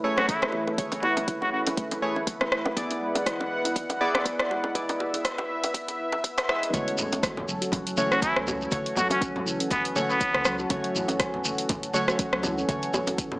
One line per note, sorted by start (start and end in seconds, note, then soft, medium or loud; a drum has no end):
0.00 2.73 A3 medium
0.00 0.76 A3 loud
0.00 0.16 C#4 medium
0.00 6.70 E4 medium
0.00 0.76 E4 medium
0.00 0.76 G#4 medium
0.00 6.70 B4 medium
0.04 0.76 C#5 loud
0.18 0.27 F#4 medium
0.18 cross-stick medium
0.18 low bongo medium
0.28 0.41 A3 medium
0.28 0.43 E4 medium
0.28 kick loud
0.28 closed hi-hat medium
0.42 cross-stick medium
0.42 low bongo medium
0.52 0.66 E3 medium
0.52 high bongo medium
0.67 0.77 A4 medium
0.67 low bongo medium
0.78 2.00 A3 medium
0.78 2.00 E4 medium
0.78 2.00 G#4 medium
0.78 2.00 C#5 medium
0.78 kick loud
0.78 closed hi-hat medium
0.92 closed hi-hat soft
0.92 low bongo medium
1.03 1.16 E4 medium
1.03 1.14 F#4 medium
1.03 high bongo loud
1.17 closed hi-hat soft
1.17 low bongo medium
1.28 1.41 E4 medium
1.28 kick loud
1.28 closed hi-hat medium
1.42 1.49 F#4 medium
1.42 low bongo medium
1.53 1.65 C#4 medium
1.53 1.62 F#4 medium
1.67 closed hi-hat soft
1.67 low bongo medium
1.77 1.90 A3 loud
1.77 kick loud
1.77 closed hi-hat medium
1.91 closed hi-hat soft
1.91 low bongo medium
2.02 2.15 E3 medium
2.02 2.17 A3 loud
2.02 2.17 E4 medium
2.02 2.17 G#4 medium
2.02 2.17 C#5 loud
2.16 2.26 A4 medium
2.16 low bongo medium
2.27 kick loud
2.27 closed hi-hat medium
2.41 cross-stick medium
2.41 low bongo medium
2.52 2.64 E4 medium
2.52 cross-stick medium
2.66 low bongo medium
2.76 2.89 B3 medium
2.76 3.98 B3 medium
2.76 3.98 E4 medium
2.76 3.98 G#4 medium
2.76 3.98 D5 loud
2.76 4.73 F#5 medium
2.76 kick loud
2.76 closed hi-hat medium
2.91 closed hi-hat soft
2.91 low bongo medium
3.01 3.14 G#3 medium
3.15 closed hi-hat soft
3.15 low bongo medium
3.26 3.39 E3 loud
3.26 kick loud
3.26 cross-stick medium
3.26 closed hi-hat medium
3.40 low bongo medium
3.51 3.63 B2 medium
3.65 3.75 E4 medium
3.65 closed hi-hat soft
3.65 low bongo medium
3.76 kick loud
3.76 closed hi-hat medium
3.90 closed hi-hat soft
3.90 low bongo medium
4.00 4.13 B3 medium
4.00 4.73 B3 loud
4.00 4.73 E4 loud
4.00 4.73 G#4 medium
4.00 4.73 D5 loud
4.15 cross-stick medium
4.15 low bongo medium
4.25 4.38 B3 medium
4.25 kick loud
4.25 closed hi-hat medium
4.39 cross-stick medium
4.39 low bongo medium
4.50 4.63 G#3 medium
4.50 high bongo medium
4.64 low bongo medium
4.75 4.88 E3 loud
4.75 5.97 B3 medium
4.75 5.97 E4 medium
4.75 5.97 G#4 medium
4.75 5.97 D5 medium
4.75 6.72 E5 medium
4.75 kick loud
4.75 closed hi-hat medium
4.89 closed hi-hat soft
4.89 low bongo loud
5.00 5.13 B2 medium
5.00 high bongo loud
5.13 5.24 E4 medium
5.13 closed hi-hat soft
5.13 low bongo medium
5.25 kick loud
5.25 cross-stick medium
5.25 closed hi-hat medium
5.38 high bongo medium
5.38 low bongo medium
5.49 5.62 B3 medium
5.64 closed hi-hat soft
5.64 low bongo medium
5.74 5.87 B3 medium
5.74 kick loud
5.74 closed hi-hat medium
5.88 closed hi-hat soft
5.88 low bongo medium
5.99 6.12 E3 loud
6.12 6.24 E4 medium
6.12 low bongo medium
6.24 6.36 B3 loud
6.24 kick loud
6.24 closed hi-hat medium
6.38 cross-stick medium
6.38 closed hi-hat soft
6.38 low bongo loud
6.49 6.62 G#3 loud
6.49 6.63 B3 medium
6.49 6.63 E4 medium
6.49 6.63 G#4 medium
6.49 6.63 E5 medium
6.49 cross-stick medium
6.63 6.73 B3 medium
6.63 closed hi-hat soft
6.63 low bongo medium
6.74 6.84 F#1 loud
6.74 7.95 A3 medium
6.74 13.39 C#4 medium
6.74 7.95 C#4 medium
6.74 13.39 F#4 medium
6.74 7.95 F#4 medium
6.74 13.39 A4 medium
6.74 7.95 C#5 loud
6.74 kick loud
6.74 closed hi-hat medium
6.74 low bongo medium
6.74 high conga loud
6.74 shekere medium
6.88 closed hi-hat soft
6.98 low conga medium
6.98 shekere medium
7.12 7.43 F#1 medium
7.12 closed hi-hat soft
7.12 low bongo medium
7.12 shekere soft
7.23 kick loud
7.23 cross-stick medium
7.23 closed hi-hat medium
7.23 shekere medium
7.37 low conga loud
7.48 7.58 F#1 medium
7.48 7.55 F#3 medium
7.48 high conga medium
7.48 shekere medium
7.61 7.72 F#4 loud
7.61 closed hi-hat soft
7.61 shekere soft
7.72 7.85 C#4 medium
7.72 kick loud
7.72 closed hi-hat medium
7.72 low bongo medium
7.72 low conga loud
7.72 shekere medium
7.86 7.94 F#1 loud
7.86 7.92 F#3 medium
7.86 closed hi-hat soft
7.86 shekere soft
7.97 8.10 E3 loud
7.97 8.69 A3 loud
7.97 8.69 C#4 medium
7.97 8.69 F#4 medium
7.97 8.69 C#5 loud
7.97 high conga loud
7.97 shekere medium
8.11 8.21 C#4 loud
8.11 8.20 F#4 medium
8.11 cross-stick medium
8.11 shekere soft
8.22 8.37 E4 medium
8.22 kick loud
8.22 closed hi-hat medium
8.22 shekere medium
8.36 8.67 C#2 loud
8.36 cross-stick medium
8.47 high bongo medium
8.47 low conga loud
8.47 shekere medium
8.61 shekere soft
8.71 8.82 F#1 loud
8.71 9.93 A3 medium
8.71 9.93 C#4 medium
8.71 9.93 F#4 medium
8.71 9.93 C#5 loud
8.71 kick loud
8.71 closed hi-hat medium
8.71 low bongo medium
8.71 high conga loud
8.71 shekere medium
8.86 closed hi-hat soft
8.96 9.04 F#3 medium
8.96 9.08 F#4 medium
8.96 high bongo loud
8.96 low conga loud
8.96 shekere medium
9.10 9.41 F#1 medium
9.10 9.22 C#4 medium
9.10 9.20 F#4 loud
9.10 closed hi-hat soft
9.10 low bongo medium
9.10 shekere soft
9.21 9.34 C#4 medium
9.21 kick loud
9.21 closed hi-hat medium
9.21 shekere medium
9.35 9.41 F#3 medium
9.35 low conga loud
9.46 9.56 F#1 medium
9.46 9.58 E3 loud
9.46 high conga medium
9.46 shekere loud
9.60 9.70 C#4 loud
9.60 closed hi-hat soft
9.60 shekere soft
9.71 9.86 B3 medium
9.71 kick loud
9.71 closed hi-hat medium
9.71 low bongo medium
9.71 low conga loud
9.71 shekere soft
9.85 9.93 F#1 loud
9.85 closed hi-hat soft
9.85 shekere soft
9.96 10.10 A3 medium
9.96 10.10 C#4 medium
9.96 10.10 F#4 medium
9.96 10.10 C#5 loud
9.96 low bongo medium
9.96 high conga loud
9.96 low conga medium
9.96 shekere loud
10.10 10.60 B3 loud
10.10 shekere soft
10.20 kick loud
10.20 closed hi-hat medium
10.20 shekere medium
10.34 10.65 C#2 medium
10.34 cross-stick medium
10.34 high conga medium
10.45 10.53 F#3 medium
10.45 cross-stick loud
10.45 shekere medium
10.59 10.69 F#4 loud
10.59 shekere soft
10.70 10.80 F#1 loud
10.70 11.92 A3 medium
10.70 10.83 C#4 medium
10.70 11.92 C#4 medium
10.70 11.92 F#4 medium
10.70 11.92 C#5 loud
10.70 kick loud
10.70 closed hi-hat medium
10.70 low bongo medium
10.70 high conga loud
10.70 shekere soft
10.84 10.90 F#3 medium
10.84 closed hi-hat soft
10.95 11.08 E3 loud
10.95 low conga medium
10.95 shekere medium
11.08 11.40 F#1 medium
11.08 11.19 C#4 loud
11.08 closed hi-hat soft
11.08 low bongo medium
11.08 shekere soft
11.20 kick loud
11.20 cross-stick medium
11.20 closed hi-hat medium
11.20 shekere medium
11.34 low conga loud
11.45 11.55 F#1 medium
11.45 high conga medium
11.45 shekere loud
11.58 closed hi-hat soft
11.58 shekere soft
11.69 kick loud
11.69 closed hi-hat medium
11.69 low bongo medium
11.69 low conga loud
11.69 shekere medium
11.83 11.91 F#1 loud
11.83 closed hi-hat soft
11.83 shekere soft
11.94 12.02 F#3 medium
11.94 12.66 A3 loud
11.94 12.66 C#4 medium
11.94 12.66 F#4 medium
11.94 12.66 C#5 loud
11.94 high conga loud
11.94 shekere loud
12.08 12.18 F#4 loud
12.08 cross-stick medium
12.08 shekere soft
12.19 12.32 C#4 medium
12.19 kick loud
12.19 closed hi-hat medium
12.19 shekere medium
12.33 12.64 C#2 medium
12.33 12.39 F#3 medium
12.33 cross-stick medium
12.43 12.56 E3 loud
12.43 high bongo medium
12.43 low conga loud
12.43 shekere medium
12.58 12.68 C#4 loud
12.58 shekere soft
12.69 12.79 F#1 loud
12.69 13.39 A3 medium
12.69 13.39 C#4 medium
12.69 13.39 F#4 medium
12.69 13.39 C#5 medium
12.69 kick loud
12.69 closed hi-hat medium
12.69 low bongo medium
12.69 high conga loud
12.69 shekere medium
12.82 closed hi-hat soft
12.82 shekere soft
12.93 high bongo loud
12.93 low conga medium
12.93 shekere medium
13.07 13.38 F#1 medium
13.07 closed hi-hat soft
13.07 low bongo medium
13.07 shekere soft
13.18 kick loud
13.18 closed hi-hat medium
13.18 shekere medium
13.32 high bongo medium
13.32 low conga loud